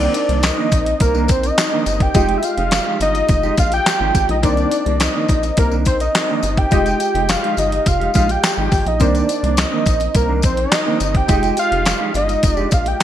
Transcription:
Already playing: D#3 A#3 C4 D4 D#4 A#4 C5 D5
0.00 closed hi-hat, tambourine
0.14 muted clean electric guitar stroke, closed hi-hat, tambourine
0.29 C2 D#3 A#3 D4, closed hi-hat
0.43 D#5, muted clean electric guitar stroke, snare, clap, closed hi-hat, tambourine
0.57 D#3 A#3 D4
0.71 A#1, muted clean electric guitar stroke, kick, closed hi-hat, tambourine
0.86 muted clean electric guitar stroke, closed hi-hat
1.00 C2 A#4, muted clean electric guitar stroke, kick, closed hi-hat, tambourine
1.14 D#3 A#3 D4, tambourine
1.28 A#1 C5, muted clean electric guitar stroke, kick, closed hi-hat, tambourine
1.43 D#5, muted clean electric guitar stroke, closed hi-hat, tambourine
1.58 muted clean electric guitar stroke, snare, clap, closed hi-hat, tambourine
1.72 D#3 A#3 D4
1.86 G1, closed hi-hat, tambourine
2.00 G5, muted clean electric guitar stroke, kick, closed hi-hat
2.14 F1 G#3 D#4 F4 G4 D#5, kick, closed hi-hat, tambourine
2.29 closed hi-hat
2.38 E5
2.43 F5, muted clean electric guitar stroke, closed hi-hat, tambourine
2.57 F1 G#3 D#4 G4, closed hi-hat
2.71 muted clean electric guitar stroke, snare, clap, closed hi-hat, tambourine
2.86 G#3 D#4 G4
3.00 G1 D#5, muted clean electric guitar stroke, closed hi-hat, tambourine
3.15 muted clean electric guitar stroke, closed hi-hat, tambourine
3.29 F1, muted clean electric guitar stroke, kick, closed hi-hat, tambourine
3.43 G#3 D#4 G4, tambourine
3.57 A#1 F5, muted clean electric guitar stroke, kick, closed hi-hat, tambourine
3.72 G5, muted clean electric guitar stroke, closed hi-hat, tambourine
3.86 snare, clap, closed hi-hat, tambourine
4.00 G#1 G#3 D#4 G4
4.15 G#1, muted clean electric guitar stroke, kick, closed hi-hat, tambourine
4.29 A#1 D#5, muted clean electric guitar stroke, closed hi-hat
4.42 C2 D#3 A#3 C4 D4 D#4 A#4 C5 D5, kick, closed hi-hat, tambourine
4.57 closed hi-hat, tambourine
4.71 closed hi-hat, tambourine
4.85 C2 D#3 A#3 D4, closed hi-hat
5.00 D#5, snare, clap, closed hi-hat, tambourine
5.14 D#3 A#3 D4
5.28 A#1, kick, closed hi-hat, tambourine
5.43 muted clean electric guitar stroke, closed hi-hat, tambourine
5.57 C2 A#4, kick, closed hi-hat, tambourine
5.71 D#3 A#3 D4, tambourine
5.85 A#1 C5, kick, closed hi-hat, tambourine
6.00 D#5, muted clean electric guitar stroke, closed hi-hat, tambourine
6.15 muted clean electric guitar stroke, snare, clap, closed hi-hat, tambourine
6.29 D#3 A#3 D4
6.43 G1, closed hi-hat, tambourine
6.57 G5, muted clean electric guitar stroke, kick, closed hi-hat
6.71 F1 G3 G#3 D#4 F4 G4 D#5 G5, kick, closed hi-hat, tambourine
6.77 G#3
6.86 closed hi-hat, tambourine
7.00 muted clean electric guitar stroke, closed hi-hat, tambourine
7.14 F1 G#3 D#4 G4, closed hi-hat
7.29 F5, snare, clap, closed hi-hat, tambourine
7.43 G#3 D#4 G4, closed hi-hat
7.57 G1 D#5, muted clean electric guitar stroke, closed hi-hat, tambourine
7.72 muted clean electric guitar stroke, closed hi-hat
7.86 F1 F5, muted clean electric guitar stroke, kick, closed hi-hat, tambourine
8.00 G#3 D#4 G4, closed hi-hat
8.14 A#1 G#3 D#4 G4 F5, kick, closed hi-hat, tambourine
8.29 G5, muted clean electric guitar stroke, closed hi-hat, tambourine
8.43 muted clean electric guitar stroke, snare, clap, closed hi-hat, tambourine
8.58 G#1 G#3 D#4 G4
8.72 G#1, kick, open hi-hat, tambourine
8.86 A#1 D#5, muted clean electric guitar stroke, closed hi-hat
9.00 C2 D#3 A#3 C4 D4 D#4 A#4 C5 D5, kick, closed hi-hat, tambourine
9.15 closed hi-hat, tambourine
9.29 muted clean electric guitar stroke, closed hi-hat, tambourine
9.43 C2 D#3 A#3 D4, closed hi-hat
9.57 D#5, snare, clap, closed hi-hat, tambourine
9.72 D#3 A#3 D4
9.86 A#1, muted clean electric guitar stroke, kick, closed hi-hat, tambourine
10.00 muted clean electric guitar stroke, closed hi-hat, tambourine
10.14 C2 A#4, muted clean electric guitar stroke, kick, closed hi-hat, tambourine
10.29 D#3 A#3 D4
10.42 A#1 C5, kick, closed hi-hat, tambourine
10.57 D#5, muted clean electric guitar stroke, closed hi-hat
10.72 muted clean electric guitar stroke, snare, clap, closed hi-hat, tambourine
10.86 D#3 A#3 D4
11.00 G1, muted clean electric guitar stroke, closed hi-hat, tambourine
11.14 G5, muted clean electric guitar stroke, kick, closed hi-hat
11.28 F1 G#3 D#4 F4 G4 D#5, kick, closed hi-hat, tambourine
11.43 closed hi-hat, tambourine
11.57 F5, muted clean electric guitar stroke, closed hi-hat, tambourine
11.71 F1 G#3 D#4 G4, closed hi-hat
11.86 snare, clap, closed hi-hat, tambourine
12.00 G#3 D#4 G4
12.14 G1 D#5, muted clean electric guitar stroke, closed hi-hat, tambourine
12.28 muted clean electric guitar stroke, closed hi-hat, tambourine
12.43 F1, muted clean electric guitar stroke, kick, closed hi-hat, tambourine
12.54 D#4 G4 D5, tambourine
12.59 G#3
12.71 A#1 F5, kick, closed hi-hat, tambourine
12.86 G5, muted clean electric guitar stroke, closed hi-hat
13.00 muted clean electric guitar stroke

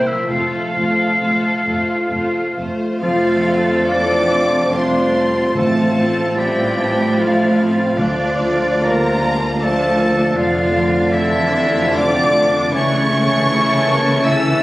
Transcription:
Already playing: C3 G3 A#3 C4 E4 A#4 C5
0.07 F3 E5
0.16 C4 F4
0.24 F4 A4
0.28 F1 F2 A3 A4 C5 F5
0.74 F1 F2 A3 F4 C5
1.19 F1 F2 A3 F4 C5
1.65 F1 F2 A3 F4 C5
2.08 F1 F2 A3 F4 C5
2.54 F1 F2 A3 F4 C5
3.00 F1 F2 F3 A3 C4 F4 A4 F5 A6
3.25 F4
3.47 D3 A4
3.70 C5
3.89 E3 A3 D4 D5 D6
3.93 C4 F5
4.14 A5
4.34 F3 C6
4.55 A5
4.72 F3 G3 C4 D4 F4 C5 C6 A6
4.76 F5
4.95 C5
5.14 C4 A4
5.36 F4
5.53 A1 A2 F3 A3 A4 A5 A6
5.58 C4 F4
5.77 C4
5.97 C4 F4
6.18 A4
6.36 E3 G3 C4 E4 G4 C5 G5
6.60 F5
6.79 A5
7.00 F5
7.17 F3 A3 D4 F4 C5 F5 A6
7.39 A4
7.58 C4 F4
7.79 C4
7.95 D2 D3 F3 A3 D4 F4 D5 A6
8.19 D4
8.41 F4
8.64 A4
8.81 D3 G3 A#3 A#4 D5 A#5
8.86 F4
9.05 F5
9.22 G3 A5
9.41 F5
9.60 F3 A3 D4 A4 D5 A5 A6
9.79 A4
9.99 A#3 F4
10.17 D4
10.34 F1 F2 D3 F3 A3 F4 F5 A6
10.38 D4
10.54 D4
10.71 D3 A4
10.92 D4
11.10 D3 E3 D4 E4 F4 D5 E5
11.31 A5
11.52 G3 D5
11.74 A5
11.94 D3 F3 A3 C4 D4 D5 D6 A6
12.15 A4
12.34 D4
12.52 A3
12.71 C#2 C#3 E3 A3 C#4 E4 C#5 C#6 A6
12.91 A3
13.09 E3 E4
13.28 A4
13.48 A3 E4 A4
13.67 E5
13.86 A#3 A5
14.04 E5
14.24 E3 A3 C#4 E4 A4 E5 E6 A6
14.44 E4

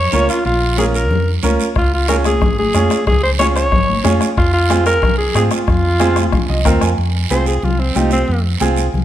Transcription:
Already playing: C#5
0.12 C#2 C#4 F4 A#4, high conga, short guiro
0.29 F4, short guiro
0.45 A#1 F4, high conga, long guiro
0.77 C#4 F4 G#4 A#4, high conga, short guiro
0.94 A#4, short guiro
1.10 F2, high conga, low conga, long guiro
1.43 C#2 C#4 F4 A#4, high conga, short guiro
1.60 short guiro
1.76 C#2 F4, bombo low, bombo rim, high conga, long guiro
1.94 F4
2.08 C#4 F4 G#4 A#4, bombo rim, high conga, short guiro
2.24 G#4, bombo rim, high conga, short guiro
2.41 G#1, bombo low, bombo rim, high conga, low conga, long guiro
2.58 G#4, high conga
2.74 F2 C#4 F4 G#4, bombo rim, high conga, short guiro
2.90 bombo rim, short guiro
3.07 C#2 G#4, bombo low, bombo rim, high conga, low conga, long guiro
3.23 C5
3.39 C#4 F4 G#4 C#5, bombo rim, high conga, short guiro
3.56 C#5, bombo rim, short guiro
3.72 G#1, bombo low, bombo rim, high conga, low conga, long guiro
3.89 high conga
4.04 F2 C#4 F4 G#4, bombo rim, high conga, short guiro
4.21 bombo rim, short guiro
4.37 F2 F4, bombo low, bombo rim, high conga, long guiro
4.54 F4
4.69 C4 F4 G#4, bombo rim, high conga, short guiro
4.86 A#4, bombo rim, short guiro
5.02 C2, bombo low, bombo rim, high conga, low conga, long guiro
5.18 G#4
5.35 G#2 C4 F4 G#4, bombo rim, high conga, short guiro
5.51 F4, bombo rim, short guiro
5.67 F2, bombo low, bombo rim, high conga, low conga, long guiro
6.00 C4 F4 G#4, bombo rim, high conga, short guiro
6.16 bombo rim, high conga, short guiro
6.32 C2, bombo low, bombo rim, high conga, low conga, long guiro
6.49 C2 D#5
6.65 D#2 C4 F4 A#4 F5, bombo low, bombo rim, high conga, short guiro
6.81 F2 G#5, bombo rim, short guiro
6.98 F2, high conga, long guiro
7.30 C2 C4 F4 G#4 C5, high conga, short guiro
7.46 G#4, short guiro
7.63 C2 F4, high conga, low conga, long guiro
7.80 C4
7.95 C2 C4 D#4 F4 G4, high conga, short guiro
8.11 C4, short guiro
8.28 F2, high conga, long guiro
8.60 C2 C4 F4 G#4, high conga, short guiro
8.76 short guiro
8.93 C2, high conga, low conga, long guiro

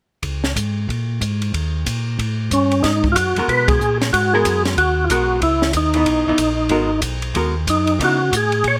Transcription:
0.22 C#2, kick, ride
0.44 snare
0.56 G#2, kick, hi-hat pedal, ride
0.89 A#2, kick, ride
1.21 G#2, kick, hi-hat pedal, ride
1.42 ride
1.54 D#2, kick, ride
1.86 A#2, kick, hi-hat pedal, ride
2.19 A2, kick, ride
2.51 G2 C#4, kick, hi-hat pedal, ride
2.71 ride
2.83 G#2 D#4, kick, snare, ride
3.04 kick
3.12 F#2 F4 F#4, kick, hi-hat pedal, ride
3.35 F#2 G#3 B3 F#4 A#4, ride
3.48 B2 B4, kick, ride
3.68 G#4, kick, ride
3.80 A#2, hi-hat pedal
4.01 snare, ride
4.13 G#2 F#4, kick, ride
4.34 G#3 B3 F#4 G#4 A#4
4.45 F#2, kick, hi-hat pedal, ride
4.65 snare, ride
4.77 D#2 F#4, kick, ride
5.04 F4
5.10 B1 G#3 B3 F#4 A#4, kick, hi-hat pedal, ride
5.42 C#2 E4, kick, ride
5.62 snare
5.73 D#2 D#4, kick, hi-hat pedal, ride
5.94 E3 B3 D#4, ride
6.06 B1, kick, ride
6.27 B1 E3 B3 D#4
6.38 A#1, kick, hi-hat pedal, ride
6.69 G#1 G#3 B3 F#4 A#4, kick, ride
7.02 B1, kick, hi-hat pedal, ride
7.22 ride
7.34 D#2 G#3 B3 F#4 A#4, kick, ride
7.67 F#2 D#4, kick, hi-hat pedal, ride
7.87 ride
8.00 C#3 E3 B3 D#4, kick, ride
8.04 F#4
8.32 A2, kick, hi-hat pedal, ride
8.37 G#4
8.52 ride
8.64 A#2 C#5, kick, ride

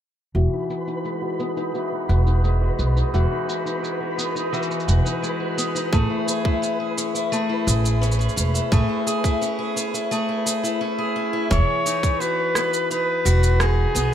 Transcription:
0.35 E1 E3 F#4 B4 B5, shaker
0.52 D#4
0.70 F#4, shaker
0.87 D#4, shaker
1.05 G#3, shaker
1.22 F#4
1.39 B3, shaker
1.57 D#4, shaker
1.74 E3 F#4, shaker
1.92 D#4
2.09 E1 F#4, shaker
2.26 D#4, shaker
2.44 G#3, shaker
2.61 F#4
2.79 B1 B3, shaker
2.96 D#4, shaker
3.13 E1 E3 F#4, shaker
3.31 D#4
3.48 F#4, shaker
3.65 D#4, shaker
3.83 G#3, shaker
4.00 F#4
4.18 B3, shaker
4.35 D#4, shaker
4.53 E3 F#4, shaker
4.63 shaker
4.70 D#4, shaker
4.80 shaker
4.87 E1 F#4, shaker
5.05 D#4, shaker
5.22 G#3, shaker
5.40 F#4
5.57 B3, shaker
5.75 D#4, shaker
5.93 A1 A3 G#4, kick, shaker
6.10 E4
6.28 G#4, shaker
6.45 E4, kick
6.62 C#4, shaker
6.80 G#4
6.97 C#4, shaker
7.15 E4, shaker
7.32 A3 G#4, shaker
7.49 E4
7.67 A1 G#4, shaker
7.84 E4, shaker
8.01 C#4, shaker
8.12 shaker
8.19 G#4, shaker
8.29 shaker
8.36 E1 C#4, shaker
8.54 E4, shaker
8.72 A1 A3 G#4, kick, shaker
8.89 E4
9.07 G#4, shaker
9.24 E4, kick, shaker
9.41 C#4, shaker
9.59 G#4
9.76 C#4, shaker
9.94 E4, shaker
10.11 A3 G#4, shaker
10.29 E4
10.46 G#4, shaker
10.63 E4, shaker
10.81 C#4 E4
10.98 G#4
11.16 C#4
11.33 E4
11.51 E1 E3 B4 C#5 B5, kick, shaker
11.86 D#4, shaker
12.03 kick, shaker
12.20 F#4 B4, shaker
12.55 B3, cross-stick, shaker
12.74 shaker
12.91 D#4 B4, shaker
13.25 E1 F#4, shaker
13.43 shaker
13.60 D#4 G#4, cross-stick, shaker
13.95 B1 B3, shaker

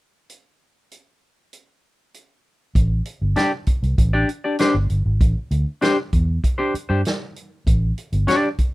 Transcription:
0.29 closed hi-hat
0.91 closed hi-hat
1.53 closed hi-hat
2.14 closed hi-hat
2.75 A1, kick, closed hi-hat
3.05 closed hi-hat
3.22 G1
3.36 D4 G4 D5, snare, closed hi-hat
3.66 muted fingered electric bass stroke, kick, closed hi-hat
3.83 C2, closed hi-hat
3.98 A1, kick, closed hi-hat
4.13 D4 G4 D5
4.29 closed hi-hat
4.44 D4 G4 D5
4.59 D4 G4 C5, snare, closed hi-hat
4.74 G1
4.90 G1, closed hi-hat
5.06 G#1
5.21 A1, kick, closed hi-hat
5.51 D2, closed hi-hat
5.81 D4 G4 C5, snare, closed hi-hat
6.13 E2, kick, closed hi-hat
6.44 kick, closed hi-hat
6.58 D4 G4 C5
6.74 muted fingered electric bass stroke, closed hi-hat
6.89 G2 D4 G4 C5
7.05 snare, closed hi-hat
7.36 closed hi-hat
7.66 A1, kick, closed hi-hat
7.98 closed hi-hat
8.12 G1, closed hi-hat
8.27 D4 G4 D5, snare, closed hi-hat
8.58 muted fingered electric bass stroke, kick, closed hi-hat

